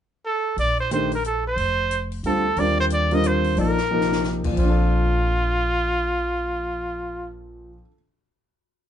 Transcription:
0.26 0.56 A4 medium
0.57 1.53 A#1 medium
0.57 0.78 D5 medium
0.57 open hi-hat soft
0.80 0.91 C5 medium
0.91 1.10 D#3 medium
0.91 1.10 A3 medium
0.91 1.10 D4 medium
0.91 1.10 G4 medium
0.91 1.10 A#4 medium
0.91 1.11 C5 medium
0.91 closed hi-hat soft
1.12 1.25 A#4 medium
1.12 open hi-hat soft
1.24 1.45 A4 medium
1.24 closed hi-hat soft
1.47 2.09 C5 medium
1.56 2.19 F1 medium
1.56 open hi-hat soft
1.91 closed hi-hat soft
2.12 open hi-hat soft
2.23 2.54 D2 medium
2.23 2.43 D3 medium
2.23 2.44 G3 soft
2.23 2.44 C4 medium
2.23 2.44 F4 medium
2.23 2.61 A4 medium
2.23 2.44 A4 medium
2.23 open hi-hat soft
2.57 3.53 D#2 medium
2.57 3.07 D3 soft
2.57 3.08 G3 soft
2.57 3.08 C4 soft
2.57 3.08 F4 soft
2.57 3.08 A#4 medium
2.57 2.79 D5 medium
2.57 open hi-hat soft
2.80 2.86 C5 medium
2.90 3.16 D5 medium
2.90 closed hi-hat soft
3.11 3.55 D3 medium
3.11 3.55 G3 medium
3.11 3.55 C4 medium
3.11 3.55 F4 medium
3.11 3.55 A#4 medium
3.11 3.28 D#5 medium
3.11 open hi-hat soft
3.24 3.59 C5 medium
3.24 closed hi-hat soft
3.44 open hi-hat soft
3.56 4.52 A#1 medium
3.56 3.76 F3 medium
3.56 3.76 A#3 soft
3.56 3.76 D#4 soft
3.56 3.76 A4 soft
3.56 3.76 D5 medium
3.56 open hi-hat soft
3.60 4.42 A#4 medium
3.78 snare soft
3.91 4.40 C3 medium
3.91 4.41 F3 soft
3.91 4.40 A#3 soft
3.91 4.41 D#4 soft
3.91 4.41 A#4 medium
4.01 snare soft
4.12 snare medium
4.24 snare soft
4.44 7.69 A#2 medium
4.44 kick medium
4.44 crash medium
4.51 7.75 F3 soft
4.56 7.76 A#1 medium
4.56 7.81 C4 soft
4.56 7.33 F4 medium
4.56 kick soft
4.56 crash soft
4.64 7.87 D4 medium
4.70 7.94 A4 medium

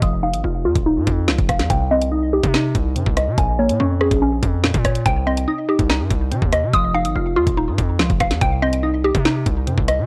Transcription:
0.02 0.35 F1 loud
0.02 1.07 F3 medium
0.02 1.28 D#6 loud
0.02 kick loud
0.02 closed hi-hat medium
0.23 1.28 D#4 medium
0.23 1.48 F5 medium
0.34 0.44 G#1 loud
0.34 closed hi-hat medium
0.44 0.67 F1 loud
0.44 0.64 F4 medium
0.65 0.75 F2 loud
0.65 1.70 F4 medium
0.76 0.98 D#1 loud
0.76 kick loud
0.76 closed hi-hat medium
0.86 1.70 D#4 medium
0.97 1.06 G#2 loud
1.07 1.29 F2 loud
1.07 kick medium
1.07 closed hi-hat medium
1.28 1.38 C2 loud
1.28 1.70 F3 medium
1.28 snare loud
1.39 1.61 F1 loud
1.39 kick loud
1.39 closed hi-hat soft
1.49 1.70 F5 medium
1.49 kick medium
1.49 cross-stick loud
1.49 closed hi-hat medium
1.59 1.69 F2 loud
1.59 snare medium
1.59 closed hi-hat medium
1.70 2.40 C2 loud
1.70 2.75 C3 medium
1.70 2.96 G5 loud
1.70 kick loud
1.70 closed hi-hat medium
1.91 2.96 C4 medium
1.91 3.16 D#5 loud
2.01 closed hi-hat medium
2.12 2.32 D#4 loud
2.33 3.38 D#4 medium
2.33 3.38 G4 medium
2.43 2.74 C3 loud
2.43 kick medium
2.43 closed hi-hat medium
2.54 3.38 D#4 medium
2.54 snare loud
2.75 2.97 C2 loud
2.75 kick loud
2.75 closed hi-hat medium
2.96 3.06 G2 loud
2.96 3.38 C3 medium
2.96 closed hi-hat medium
3.06 3.29 C2 loud
3.06 kick loud
3.17 3.38 D#5 medium
3.17 cross-stick loud
3.17 closed hi-hat medium
3.27 3.37 C3 loud
3.38 3.71 A#1 loud
3.38 4.43 A#2 loud
3.38 4.64 G#5 loud
3.38 kick loud
3.38 closed hi-hat medium
3.59 4.64 A#3 medium
3.59 4.84 C#5 medium
3.69 3.79 A#2 loud
3.69 closed hi-hat medium
3.80 4.10 F2 loud
3.80 4.00 C#4 loud
4.01 5.06 C#4 medium
4.01 5.06 G#4 medium
4.01 cross-stick medium
4.11 4.41 A#1 loud
4.11 kick loud
4.11 closed hi-hat medium
4.22 5.06 C#4 medium
4.43 4.73 F2 loud
4.43 kick medium
4.43 closed hi-hat medium
4.64 5.06 A#2 medium
4.64 snare loud
4.74 5.04 A#2 loud
4.74 kick loud
4.74 closed hi-hat medium
4.85 5.06 C#5 medium
4.85 kick medium
4.85 cross-stick loud
4.85 closed hi-hat medium
4.95 closed hi-hat medium
5.06 5.46 C2 loud
5.06 6.11 C3 medium
5.06 6.32 G5 loud
5.06 kick loud
5.06 closed hi-hat medium
5.27 6.32 C4 medium
5.27 6.51 D#5 medium
5.37 closed hi-hat medium
5.48 5.67 D#4 loud
5.69 6.73 D#4 medium
5.69 6.73 G4 medium
5.79 6.02 C2 loud
5.79 kick loud
5.79 closed hi-hat medium
5.90 6.74 D#4 medium
5.90 snare loud
6.00 6.10 G2 loud
6.10 6.33 C2 loud
6.10 kick medium
6.10 closed hi-hat medium
6.32 6.73 C3 medium
6.32 6.42 C3 loud
6.32 closed hi-hat medium
6.42 6.65 D#2 loud
6.42 kick loud
6.52 6.74 D#5 medium
6.52 cross-stick loud
6.52 closed hi-hat medium
6.63 6.73 C3 loud
6.73 7.06 F1 loud
6.73 7.78 F3 medium
6.73 7.99 D#6 loud
6.73 kick loud
6.73 closed hi-hat medium
6.94 7.99 D#4 medium
6.94 8.19 F5 medium
7.05 7.15 G#1 loud
7.05 closed hi-hat medium
7.15 7.38 F1 loud
7.15 7.35 F4 medium
7.36 7.46 F2 loud
7.36 8.41 F4 medium
7.47 7.69 D#1 loud
7.47 kick medium
7.47 closed hi-hat medium
7.57 8.41 D#4 medium
7.68 7.78 G#2 loud
7.78 8.01 F2 loud
7.78 kick medium
7.78 closed hi-hat medium
7.99 8.09 C2 loud
7.99 8.41 F3 medium
7.99 snare loud
8.10 8.32 F1 loud
8.10 kick loud
8.10 closed hi-hat soft
8.20 8.41 F5 medium
8.20 kick medium
8.20 cross-stick loud
8.20 closed hi-hat medium
8.31 8.41 F2 loud
8.31 snare medium
8.31 closed hi-hat medium
8.41 9.12 C2 loud
8.41 9.46 C3 loud
8.41 9.67 G5 loud
8.41 kick loud
8.41 closed hi-hat medium
8.62 9.67 C4 medium
8.62 9.87 D#5 loud
8.73 closed hi-hat medium
8.83 9.03 D#4 loud
9.04 10.06 D#4 medium
9.04 10.06 G4 medium
9.15 9.45 C3 loud
9.15 kick medium
9.15 closed hi-hat medium
9.25 10.06 D#4 medium
9.25 snare loud
9.46 9.69 C2 loud
9.46 kick medium
9.46 closed hi-hat medium
9.67 9.77 G2 loud
9.67 10.06 C3 medium
9.67 closed hi-hat medium
9.78 10.00 C2 loud
9.78 kick loud
9.88 10.06 D#5 medium
9.88 cross-stick loud
9.88 closed hi-hat medium
9.99 10.06 C3 loud

